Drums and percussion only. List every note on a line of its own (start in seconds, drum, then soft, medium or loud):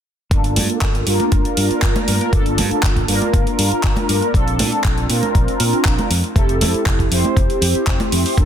0.31 kick loud
0.31 closed hi-hat medium
0.44 closed hi-hat soft
0.56 open hi-hat medium
0.56 high conga medium
0.70 closed hi-hat soft
0.81 kick loud
0.81 clap loud
0.81 closed hi-hat medium
0.95 closed hi-hat soft
1.07 open hi-hat loud
1.20 closed hi-hat soft
1.20 high conga medium
1.32 kick loud
1.32 closed hi-hat medium
1.45 closed hi-hat soft
1.57 open hi-hat medium
1.71 closed hi-hat soft
1.82 kick loud
1.82 clap loud
1.82 closed hi-hat medium
1.96 closed hi-hat soft
1.96 high conga medium
2.08 open hi-hat loud
2.21 closed hi-hat soft
2.33 kick loud
2.33 closed hi-hat medium
2.46 closed hi-hat soft
2.58 open hi-hat loud
2.58 high conga medium
2.71 closed hi-hat soft
2.83 kick loud
2.83 clap loud
2.83 closed hi-hat medium
2.96 kick medium
2.96 closed hi-hat soft
3.08 open hi-hat loud
3.22 closed hi-hat soft
3.22 high conga medium
3.33 kick loud
3.33 closed hi-hat medium
3.47 closed hi-hat soft
3.59 open hi-hat loud
3.72 closed hi-hat soft
3.83 kick loud
3.83 clap loud
3.83 closed hi-hat medium
3.96 closed hi-hat soft
3.96 high conga medium
4.09 open hi-hat loud
4.22 closed hi-hat soft
4.34 kick loud
4.34 closed hi-hat medium
4.48 closed hi-hat soft
4.59 open hi-hat loud
4.59 high conga medium
4.72 closed hi-hat soft
4.84 kick loud
4.84 clap loud
4.84 closed hi-hat medium
4.98 closed hi-hat soft
5.10 open hi-hat loud
5.23 closed hi-hat soft
5.23 high conga medium
5.35 kick loud
5.35 closed hi-hat medium
5.48 closed hi-hat soft
5.60 open hi-hat loud
5.73 closed hi-hat soft
5.85 kick loud
5.85 clap loud
5.85 closed hi-hat medium
5.99 closed hi-hat soft
5.99 high conga medium
6.11 open hi-hat loud
6.24 closed hi-hat soft
6.36 kick loud
6.36 closed hi-hat medium
6.49 closed hi-hat soft
6.61 open hi-hat loud
6.61 high conga medium
6.74 closed hi-hat soft
6.86 kick loud
6.86 clap loud
6.86 closed hi-hat medium
6.99 kick medium
6.99 closed hi-hat soft
7.12 open hi-hat loud
7.24 closed hi-hat soft
7.24 high conga medium
7.37 kick loud
7.37 closed hi-hat medium
7.50 closed hi-hat soft
7.62 open hi-hat loud
7.75 closed hi-hat soft
7.87 kick loud
7.87 clap loud
7.87 closed hi-hat medium
8.00 closed hi-hat soft
8.00 high conga medium
8.12 open hi-hat loud
8.26 open hi-hat medium
8.38 kick loud
8.38 closed hi-hat medium